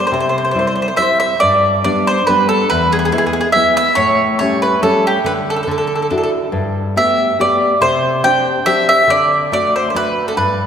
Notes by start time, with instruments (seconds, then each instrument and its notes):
0.07 mandolin C5
0.12 nylon-string guitar C3, mandolin C5
0.20 mandolin C5
0.29 mandolin C5
0.38 mandolin C5
0.45 mandolin C5
0.51 nylon-string guitar G3 C4, mandolin C5
0.56 nylon-string guitar E4, mandolin C5
0.67 mandolin C5
0.75 mandolin C5
0.82 mandolin C5
0.88 mandolin C5
0.96 nylon-string guitar G3 C4 E4, mandolin C5 E5
1.02 mandolin C5
1.20 mandolin E5
1.40 nylon-string guitar G2, mandolin D5
1.84 nylon-string guitar G3 B3 D4, mandolin D5
2.07 mandolin C5
2.27 nylon-string guitar G3 B3 D4, mandolin B4
2.49 mandolin A4
2.70 nylon-string guitar E2, mandolin B4
2.92 mandolin G#4
2.99 mandolin G#4
3.05 mandolin G#4
3.12 nylon-string guitar G#3 B3 E4, mandolin G#4
3.18 mandolin G#4
3.27 mandolin G#4
3.33 mandolin G#4
3.41 mandolin G#4
3.52 nylon-string guitar G#3 B3 E4, mandolin E5
3.77 mandolin E5
3.95 nylon-string guitar A2, mandolin C#5
4.39 nylon-string guitar G3 A3 C#4, mandolin C#5
4.62 mandolin B4
4.82 nylon-string guitar G3 A3 C#4, mandolin A4
5.07 mandolin G4
5.24 nylon-string guitar D3, mandolin B4
5.50 mandolin A4
5.56 mandolin A4
5.63 mandolin A4
5.67 nylon-string guitar D3
5.71 mandolin A4
5.78 mandolin A4
5.87 mandolin A4
5.95 mandolin A4
6.02 mandolin A4
6.10 nylon-string guitar D4 E4 F#4, mandolin A4
6.18 mandolin A4
6.23 mandolin A4
6.52 nylon-string guitar G2
6.96 nylon-string guitar A3 B3 G4, mandolin E5
7.39 nylon-string guitar A3 B3 G4, mandolin D5
7.81 nylon-string guitar C3, mandolin C5
8.23 nylon-string guitar C4 D4 G4, mandolin G5
8.66 nylon-string guitar C4 D4 G4, mandolin E5
8.89 mandolin E5
9.07 nylon-string guitar D3, mandolin D5
9.52 nylon-string guitar A3 D4 F#4, mandolin D5
9.76 mandolin C5
9.90 mandolin C5
9.95 nylon-string guitar A3 D4 F#4, mandolin B4
10.28 mandolin A4
10.37 nylon-string guitar G2, mandolin B4